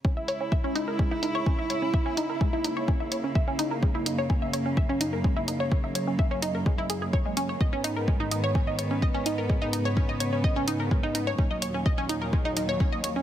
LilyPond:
<<
  \new Staff \with { instrumentName = "Synth arpeggio sound" } { \time 4/4 \key cis \dorian \tempo 4 = 127 cis'16 e''16 cis''16 cis'16 e''16 cis'16 dis'16 ais'16 gis16 e'16 dis'16 cis''16 cis'16 e''16 cis''16 cis'16 | e''16 cis'16 dis'16 ais'16 gis16 e'16 dis'16 cis''16 cis'16 e''16 cis''16 cis'16 e''16 cis'16 dis'16 ais'16 | gis16 e'16 dis'16 cis''16 cis'16 e''16 cis''16 cis'16 e''16 cis'16 dis'16 ais'16 gis16 e'16 dis'16 cis''16 | cis'16 e''16 cis''16 cis'16 e''16 cis'16 dis'16 ais'16 gis16 e'16 gis'16 gis'16 cis''16 gis16 cis'16 cis''16 |
dis''16 cis'16 dis'16 ais'16 gis16 dis'16 dis'16 cis''16 cis'16 dis''16 cis''16 cis'16 dis''16 cis'16 dis'16 ais'16 | gis16 dis'16 dis'16 cis''16 cis'16 dis''16 cis''16 cis'16 dis''16 cis'16 dis'16 ais'16 gis16 dis'16 dis'16 cis''16 | cis'16 dis''16 cis''16 cis'16 dis''16 cis'16 dis'16 ais'16 gis16 dis'16 dis'16 cis''16 cis'16 dis''16 cis''16 cis'16 | }
  \new Staff \with { instrumentName = "String section" } { \clef bass \time 4/4 \key cis \dorian << { <cis e'>1~ | <cis e'>1 | fis,1~ | fis,1 |
<gis, b>1~ | <gis, b>1 | <dis, fis>1 | } \\ { gis1 | ais1~ | ais1~ | ais1 |
dis1 | cis1 | ais,1 | } >> }
  \new DrumStaff \with { instrumentName = "Drums" } \drummode { \time 4/4 bd8 hh8 bd8 hh8 bd8 hh8 bd8 hh8 | bd8 hh8 bd8 hh8 bd8 hh8 bd8 hh8 | bd8 hh8 bd8 hh8 bd8 hh8 bd8 hh8 | bd8 hh8 bd8 hh8 bd8 hh8 bd8 hh8 |
bd8 hh8 bd8 hh8 bd8 hh8 bd8 hh8 | bd8 hh8 bd8 hh8 bd8 hh8 bd8 hh8 | bd8 hh8 bd8 hh8 bd8 hh8 bd8 hh8 | }
>>